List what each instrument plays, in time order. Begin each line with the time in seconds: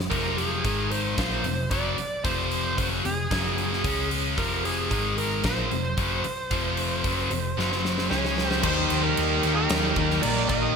0.00 snare
0.10 picked electric bass F1, distorted electric guitar F2 C3 F3, lead electric guitar A#4, kick, open hi-hat
0.38 lead electric guitar G#4, open hi-hat
0.64 picked electric bass G#1, distorted electric guitar G#2 D#3 G#3, kick, open hi-hat
0.92 lead electric guitar C5, open hi-hat
1.17 picked electric bass A#1, distorted electric guitar A#2 F3 A#3, kick, snare, open hi-hat
1.44 picked electric bass F1, distorted electric guitar F2 C3, open hi-hat
1.71 picked electric bass F#1, distorted electric guitar F#2 C#3 F#3, lead electric guitar D5, kick, open hi-hat
1.98 muted distorted electric guitar stroke, muted overdriven electric guitar stroke, open hi-hat
2.25 picked electric bass F1, distorted electric guitar F2 C3 F3, lead electric guitar C5, kick, open hi-hat
2.51 open hi-hat
2.78 picked electric bass F#1, distorted electric guitar F#2 C#3 F#3, lead electric guitar C5, kick, open hi-hat
3.05 picked electric bass F1, distorted electric guitar F2 C3, lead electric guitar G#4, open hi-hat
3.31 picked electric bass F#1, distorted electric guitar F#2 C#3 F#3, kick, snare, open hi-hat
3.58 open hi-hat
3.73 snare
3.84 picked electric bass C#2, distorted electric guitar C#3 G#3 C#4, kick, open hi-hat
4.11 open hi-hat
4.37 picked electric bass F1, distorted electric guitar F2 C3 F3, lead electric guitar A#4, kick, open hi-hat
4.65 lead electric guitar G#4, open hi-hat
4.90 picked electric bass G#1, distorted electric guitar G#2 D#3 G#3, kick, open hi-hat
5.18 lead electric guitar A#4, open hi-hat
5.43 picked electric bass A#1, distorted electric guitar A#2 F3 A#3, lead electric guitar C5, kick, snare, open hi-hat
5.71 picked electric bass F1, distorted electric guitar F2 C3, open hi-hat
5.97 picked electric bass F#1, distorted electric guitar F#2 C#3 F#3, kick, open hi-hat
6.24 muted distorted electric guitar stroke, muted overdriven electric guitar stroke, open hi-hat
6.51 picked electric bass F1, distorted electric guitar F2 C3 F3, kick, open hi-hat
6.77 open hi-hat
7.04 picked electric bass F#1, distorted electric guitar F#2 C#3 F#3, kick, open hi-hat
7.31 picked electric bass F1, distorted electric guitar F2 C3, open hi-hat
7.57 picked electric bass F#1, distorted electric guitar F#2 C#3 F#3, snare
7.72 snare
7.85 snare
7.98 snare
8.10 picked electric bass C#2, distorted electric guitar C#3 G#3 C#4, lead electric guitar G#4 C#5, snare
8.25 snare
8.38 snare
8.46 lead electric guitar G4 C5
8.51 snare
8.63 picked electric bass D#2, distorted electric guitar D#3 G3 A#3 D#4 G4, lead electric guitar G4 C5, kick, crash
8.90 picked electric bass D#2, crash
9.02 lead electric guitar G4 A#4
9.17 picked electric bass D#2, distorted electric guitar D#3 G3 A#3 D#4 G4, crash
9.43 picked electric bass D#2, distorted electric guitar D#3 G3 A#3 D#4 G4, crash
9.55 lead electric guitar G4 A#4
9.69 picked electric bass D#2, distorted electric guitar D#3 G3 A#3 D#4 G4, snare, crash
9.96 picked electric bass D#2, kick, crash
10.10 snare
10.22 picked electric bass A#1, distorted electric guitar D#3 G3 A#3 D#4 G4, lead electric guitar A#4 D5, crash
10.49 picked electric bass A#1, distorted electric guitar D#3 G3 A#3 D#4 G4, lead electric guitar A#4 D#5, kick, crash